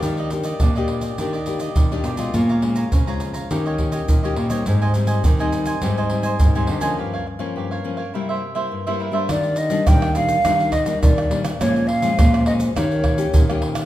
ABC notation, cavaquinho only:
X:1
M:4/4
L:1/16
Q:1/4=104
K:Eb
V:1 name="Cavaquinho"
[DGde] [Gde] z [Gde] [DGde] [Gde]2 [Gde] [DGde] [Gde]2 [Gde]2 [Gde] [DGde] [Gde] | [A_dfb] [dfb] z [dfb] [Adfb] [dfb]2 [dfb] [EGde] [Gde]2 [Gde]2 [Gde] [EGde] [Gde] | [Gcea] [cea] z [cea] [Gcea] [cea]2 [cea] [Gcea] [cea]2 [cea]2 [cea] [Gcea] [cea] | [GB_df] [Bdf] z [Bdf] [GBdf] [Bdf]2 [Bdf] [=EBc=e] [Bce]2 [Bce]2 [Bce] [EBce] [Bce] |
z16 | z16 |]